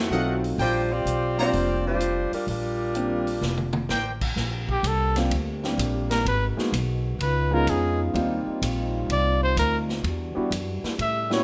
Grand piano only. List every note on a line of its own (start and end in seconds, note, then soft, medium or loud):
0.12 0.59 F#3 medium
0.12 0.59 A3 soft
0.12 0.59 C4 medium
0.12 0.59 D#4 soft
0.12 0.60 F4 medium
1.38 1.97 G3 medium
1.38 1.98 A#3 medium
1.38 1.98 C4 medium
1.38 1.98 D4 medium
1.38 1.98 F4 medium
2.95 3.24 G3 medium
2.95 3.24 A#3 medium
2.95 3.24 C4 soft
2.95 3.25 D4 soft
2.95 3.25 F4 medium
5.16 5.30 G3 medium
5.16 5.30 A#3 soft
5.16 5.30 C4 medium
5.16 5.31 D4 soft
5.16 5.31 F4 medium
5.63 6.23 G3 medium
5.63 6.23 A#3 medium
5.63 6.23 C4 medium
5.63 6.24 D4 medium
5.63 6.24 G4 medium
6.57 6.71 G#3 medium
6.57 6.71 A#3 soft
6.57 6.72 B3 medium
6.57 6.72 D#4 medium
6.57 6.72 F#4 medium
7.51 8.11 G#3 medium
7.51 8.12 B3 medium
7.51 8.12 C#4 medium
7.51 8.12 D#4 medium
7.51 8.12 F4 medium
8.14 9.47 G3 medium
8.14 9.47 A#3 medium
8.14 9.48 C4 medium
8.14 9.48 D#4 medium
8.14 9.48 F4 medium
10.35 10.49 G3 medium
10.35 10.49 B3 medium
10.35 10.50 D4 medium
10.35 10.50 E4 medium
10.35 10.50 F#4 medium
11.30 11.44 G3 medium
11.30 11.44 B3 medium
11.30 11.44 C#4 medium
11.30 11.44 E4 medium
11.30 11.44 F#4 medium